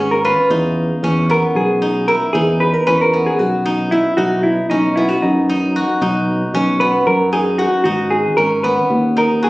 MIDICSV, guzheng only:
0, 0, Header, 1, 2, 480
1, 0, Start_track
1, 0, Tempo, 524934
1, 465, Time_signature, 7, 3, 24, 8
1, 8684, End_track
2, 0, Start_track
2, 0, Title_t, "Guzheng"
2, 0, Program_c, 0, 107
2, 0, Note_on_c, 0, 59, 68
2, 0, Note_on_c, 0, 61, 70
2, 0, Note_on_c, 0, 63, 74
2, 0, Note_on_c, 0, 65, 68
2, 221, Note_off_c, 0, 65, 0
2, 225, Note_on_c, 0, 65, 73
2, 458, Note_off_c, 0, 63, 0
2, 461, Note_on_c, 0, 63, 68
2, 944, Note_off_c, 0, 61, 0
2, 948, Note_on_c, 0, 61, 73
2, 1181, Note_off_c, 0, 59, 0
2, 1185, Note_on_c, 0, 59, 64
2, 1659, Note_off_c, 0, 63, 0
2, 1662, Note_on_c, 0, 63, 73
2, 1902, Note_on_c, 0, 64, 68
2, 1957, Note_off_c, 0, 63, 0
2, 1957, Note_off_c, 0, 65, 0
2, 2147, Note_on_c, 0, 63, 77
2, 2202, Note_off_c, 0, 64, 0
2, 2618, Note_off_c, 0, 61, 0
2, 2622, Note_on_c, 0, 61, 76
2, 2863, Note_off_c, 0, 59, 0
2, 2866, Note_on_c, 0, 59, 64
2, 3339, Note_off_c, 0, 63, 0
2, 3342, Note_on_c, 0, 63, 77
2, 3584, Note_on_c, 0, 64, 66
2, 3639, Note_off_c, 0, 63, 0
2, 3820, Note_on_c, 0, 63, 70
2, 3875, Note_off_c, 0, 64, 0
2, 4302, Note_off_c, 0, 61, 0
2, 4305, Note_on_c, 0, 61, 71
2, 4543, Note_off_c, 0, 59, 0
2, 4547, Note_on_c, 0, 59, 62
2, 5021, Note_off_c, 0, 63, 0
2, 5024, Note_on_c, 0, 63, 82
2, 5266, Note_on_c, 0, 66, 72
2, 5500, Note_off_c, 0, 63, 0
2, 5503, Note_on_c, 0, 63, 74
2, 5981, Note_off_c, 0, 61, 0
2, 5985, Note_on_c, 0, 61, 81
2, 6221, Note_off_c, 0, 59, 0
2, 6224, Note_on_c, 0, 59, 64
2, 6695, Note_off_c, 0, 63, 0
2, 6698, Note_on_c, 0, 63, 77
2, 6934, Note_off_c, 0, 66, 0
2, 6938, Note_on_c, 0, 66, 70
2, 7177, Note_off_c, 0, 63, 0
2, 7181, Note_on_c, 0, 63, 74
2, 7656, Note_off_c, 0, 61, 0
2, 7659, Note_on_c, 0, 61, 70
2, 7897, Note_off_c, 0, 59, 0
2, 7901, Note_on_c, 0, 59, 72
2, 8378, Note_off_c, 0, 63, 0
2, 8381, Note_on_c, 0, 63, 75
2, 8615, Note_off_c, 0, 66, 0
2, 8619, Note_on_c, 0, 66, 70
2, 8684, Note_off_c, 0, 59, 0
2, 8684, Note_off_c, 0, 61, 0
2, 8684, Note_off_c, 0, 63, 0
2, 8684, Note_off_c, 0, 66, 0
2, 8684, End_track
0, 0, End_of_file